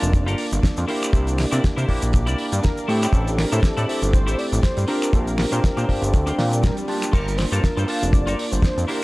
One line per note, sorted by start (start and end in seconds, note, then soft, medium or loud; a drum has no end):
0.00 0.29 F1 medium
0.00 0.85 A#3 medium
0.00 0.86 D4 medium
0.00 7.13 D4 medium
0.00 0.86 F4 medium
0.00 7.12 D5 medium
0.00 0.86 A5 medium
0.00 closed hi-hat medium
0.00 cabasa medium
0.13 kick loud
0.13 closed hi-hat medium
0.13 cabasa medium
0.26 0.35 G1 loud
0.26 0.45 F4 loud
0.26 0.45 G4 loud
0.26 0.46 A4 loud
0.26 0.46 A#4 loud
0.26 closed hi-hat soft
0.26 cabasa soft
0.38 open hi-hat loud
0.51 0.60 G1 loud
0.51 closed hi-hat medium
0.51 cabasa medium
0.63 muted clean electric guitar stroke medium
0.63 kick loud
0.63 snare loud
0.63 closed hi-hat medium
0.63 cabasa medium
0.77 0.85 F2 loud
0.77 muted clean electric guitar stroke soft
0.77 closed hi-hat medium
0.77 cabasa medium
0.88 1.49 A#3 medium
0.88 1.49 D4 medium
0.88 1.29 E4 medium
0.88 1.49 E4 medium
0.88 1.30 G4 medium
0.88 1.50 G4 medium
0.88 1.30 A#4 medium
0.88 1.30 C5 loud
0.88 open hi-hat loud
1.02 finger snap medium
1.02 closed hi-hat medium
1.02 cabasa medium
1.13 1.46 C2 loud
1.13 kick loud
1.13 closed hi-hat medium
1.13 cabasa medium
1.27 closed hi-hat medium
1.27 cabasa medium
1.38 finger snap medium
1.38 muted clean electric guitar stroke soft
1.38 snare medium
1.38 open hi-hat loud
1.51 1.60 C3 medium
1.51 1.86 A#3 medium
1.51 1.86 D4 medium
1.51 1.63 E4 medium
1.51 1.86 E4 medium
1.51 1.63 G4 medium
1.51 1.86 G4 medium
1.51 1.64 A#4 medium
1.51 1.64 D5 loud
1.51 closed hi-hat medium
1.51 cabasa medium
1.64 kick loud
1.64 snare loud
1.64 closed hi-hat medium
1.64 cabasa medium
1.76 1.85 C3 medium
1.76 2.02 E4 medium
1.76 2.02 G4 medium
1.76 2.03 A#4 medium
1.76 2.03 C5 loud
1.76 closed hi-hat medium
1.76 cabasa soft
1.88 2.00 A#1 soft
1.88 2.86 A#3 medium
1.88 2.86 D4 medium
1.88 2.86 E4 medium
1.88 2.87 G4 loud
1.88 kick medium
1.88 open hi-hat loud
2.02 2.29 A#1 loud
2.02 closed hi-hat medium
2.02 cabasa medium
2.13 kick loud
2.13 closed hi-hat medium
2.13 cabasa medium
2.26 2.35 C2 medium
2.26 2.45 E4 loud
2.26 2.45 G4 loud
2.26 2.46 A#4 loud
2.26 2.46 D5 loud
2.26 closed hi-hat medium
2.26 cabasa soft
2.38 open hi-hat medium
2.52 2.60 G2 loud
2.52 closed hi-hat medium
2.52 cabasa medium
2.63 2.90 A#4 medium
2.63 muted clean electric guitar stroke medium
2.63 kick loud
2.63 snare loud
2.63 closed hi-hat medium
2.63 cabasa medium
2.77 muted clean electric guitar stroke soft
2.77 closed hi-hat soft
2.77 cabasa soft
2.88 3.07 A2 medium
2.88 3.49 A3 medium
2.88 3.49 C4 medium
2.88 3.29 E4 medium
2.88 3.49 E4 medium
2.88 3.15 G4 medium
2.88 3.30 G4 medium
2.88 3.50 G4 medium
2.88 3.30 A4 medium
2.88 3.30 C5 loud
2.88 open hi-hat loud
3.02 finger snap medium
3.02 closed hi-hat medium
3.02 cabasa medium
3.13 3.46 A1 loud
3.13 3.40 A4 loud
3.13 kick loud
3.13 closed hi-hat medium
3.13 cabasa medium
3.27 closed hi-hat medium
3.27 cabasa medium
3.38 3.65 A#4 medium
3.38 finger snap medium
3.38 muted clean electric guitar stroke soft
3.38 snare medium
3.38 open hi-hat loud
3.52 3.60 A2 medium
3.52 3.86 A3 medium
3.52 3.86 C4 medium
3.52 3.63 E4 medium
3.52 3.86 E4 medium
3.52 3.64 G4 medium
3.52 3.86 G4 medium
3.52 3.64 A4 medium
3.52 3.64 C5 loud
3.52 closed hi-hat medium
3.52 cabasa medium
3.63 4.15 A4 loud
3.63 kick loud
3.63 snare loud
3.63 closed hi-hat medium
3.63 cabasa medium
3.77 3.85 A2 loud
3.77 4.02 E4 medium
3.77 4.02 G4 medium
3.77 4.03 A4 medium
3.77 4.03 D5 loud
3.77 closed hi-hat medium
3.77 cabasa medium
3.88 4.86 A3 medium
3.88 4.86 C4 medium
3.88 4.86 E4 medium
3.88 4.87 G4 loud
3.88 open hi-hat loud
4.02 4.29 G1 loud
4.02 closed hi-hat medium
4.02 cabasa medium
4.13 4.40 C5 loud
4.13 kick loud
4.13 closed hi-hat medium
4.13 cabasa medium
4.27 4.35 A1 loud
4.27 4.45 E4 loud
4.27 4.46 G4 loud
4.27 4.46 A4 loud
4.27 4.46 C5 loud
4.27 closed hi-hat medium
4.27 cabasa medium
4.38 4.62 D5 loud
4.38 open hi-hat loud
4.52 4.60 A1 loud
4.52 closed hi-hat medium
4.52 cabasa medium
4.63 4.87 C5 loud
4.63 muted clean electric guitar stroke medium
4.63 kick loud
4.63 snare loud
4.63 closed hi-hat medium
4.63 cabasa medium
4.77 4.85 G2 medium
4.77 muted clean electric guitar stroke soft
4.77 closed hi-hat medium
4.77 cabasa medium
4.88 5.49 C4 medium
4.88 5.29 D4 medium
4.88 5.49 D4 medium
4.88 5.49 F4 medium
4.88 5.30 G4 medium
4.88 5.50 G4 medium
4.88 5.12 A#4 loud
4.88 5.30 A#4 medium
4.88 5.30 C5 loud
4.88 open hi-hat loud
5.02 finger snap medium
5.02 closed hi-hat medium
5.02 cabasa medium
5.13 5.46 A#1 loud
5.13 6.08 A#4 loud
5.13 kick loud
5.13 closed hi-hat medium
5.13 cabasa medium
5.27 closed hi-hat medium
5.27 cabasa soft
5.38 finger snap medium
5.38 muted clean electric guitar stroke soft
5.38 snare medium
5.38 open hi-hat loud
5.51 5.60 A#2 medium
5.51 5.86 C4 medium
5.51 5.63 D4 medium
5.51 5.86 D4 medium
5.51 5.86 F4 medium
5.51 5.63 G4 medium
5.51 5.86 G4 medium
5.51 5.64 A#4 medium
5.51 5.64 C5 loud
5.51 closed hi-hat medium
5.51 cabasa medium
5.64 kick loud
5.64 snare loud
5.64 closed hi-hat medium
5.64 cabasa medium
5.76 5.85 A#2 medium
5.76 6.02 D4 medium
5.76 6.02 G4 medium
5.76 6.03 A#4 medium
5.76 6.03 C5 loud
5.76 closed hi-hat medium
5.76 cabasa medium
5.88 6.00 G1 soft
5.88 6.86 C4 medium
5.88 6.86 D4 medium
5.88 6.86 F4 medium
5.88 6.87 G4 loud
5.88 kick medium
5.88 open hi-hat loud
6.02 6.13 G1 loud
6.02 closed hi-hat medium
6.02 cabasa medium
6.08 6.59 A4 loud
6.13 6.32 D2 medium
6.13 kick loud
6.13 closed hi-hat medium
6.13 swell medium
6.13 cabasa medium
6.27 6.45 D4 loud
6.27 6.45 G4 loud
6.27 6.46 A#4 loud
6.27 6.46 C5 loud
6.27 closed hi-hat medium
6.27 cabasa soft
6.38 6.71 A#2 medium
6.38 snare medium
6.38 open hi-hat medium
6.51 closed hi-hat medium
6.51 cabasa medium
6.62 6.74 A#4 loud
6.62 muted clean electric guitar stroke medium
6.62 kick loud
6.62 snare loud
6.62 closed hi-hat medium
6.62 cabasa medium
6.77 muted clean electric guitar stroke soft
6.77 closed hi-hat medium
6.77 cabasa medium
6.87 7.49 A#3 medium
6.87 7.49 D4 medium
6.87 7.49 F4 medium
6.87 7.14 G4 loud
6.87 7.50 A5 medium
6.87 open hi-hat loud
7.02 finger snap medium
7.02 closed hi-hat medium
7.02 cabasa medium
7.13 7.46 G1 loud
7.13 9.04 D4 medium
7.13 7.27 F4 loud
7.13 7.27 G4 loud
7.13 7.28 A4 loud
7.13 7.39 A#4 loud
7.13 7.28 A#4 loud
7.13 9.04 D5 medium
7.13 kick loud
7.13 closed hi-hat medium
7.13 crash medium
7.13 cabasa medium
7.28 closed hi-hat medium
7.28 cabasa soft
7.38 7.64 C5 loud
7.38 finger snap medium
7.38 muted clean electric guitar stroke soft
7.38 snare medium
7.38 open hi-hat loud
7.52 7.60 G2 medium
7.52 7.86 A#3 medium
7.52 7.86 D4 medium
7.52 7.63 F4 medium
7.52 7.86 F4 medium
7.52 7.64 G4 medium
7.52 7.64 A4 medium
7.52 7.64 A#4 loud
7.52 7.86 A5 medium
7.52 closed hi-hat medium
7.52 cabasa medium
7.63 7.89 A#4 loud
7.63 kick loud
7.63 snare loud
7.63 closed hi-hat medium
7.63 cabasa medium
7.77 7.85 G2 medium
7.77 8.02 F4 medium
7.77 8.02 G4 medium
7.77 8.03 A4 medium
7.77 8.03 C5 loud
7.77 closed hi-hat medium
7.77 cabasa medium
7.88 8.86 A#3 medium
7.88 8.86 D4 medium
7.88 8.86 F4 medium
7.88 8.12 F5 loud
7.88 8.87 A5 medium
7.88 open hi-hat loud
8.02 8.29 F1 loud
8.02 closed hi-hat medium
8.02 cabasa medium
8.12 8.53 D5 loud
8.12 kick loud
8.12 closed hi-hat medium
8.12 cabasa medium
8.27 8.35 G1 medium
8.27 8.45 F4 loud
8.27 8.46 G4 loud
8.27 8.46 A4 loud
8.27 8.46 A#4 loud
8.27 closed hi-hat medium
8.27 cabasa medium
8.39 open hi-hat loud
8.51 8.60 G1 loud
8.51 8.89 C5 loud
8.51 closed hi-hat medium
8.51 cabasa medium
8.62 muted clean electric guitar stroke medium
8.62 kick loud
8.62 snare loud
8.62 closed hi-hat medium
8.62 cabasa medium
8.77 8.85 F2 medium
8.77 muted clean electric guitar stroke soft
8.77 closed hi-hat medium
8.77 cabasa soft
8.88 9.04 A#3 medium
8.88 9.04 D4 medium
8.88 9.04 E4 medium
8.88 9.04 G4 medium
8.88 9.04 A#4 loud
8.88 9.04 A#4 medium
8.88 9.04 C5 loud
8.88 open hi-hat loud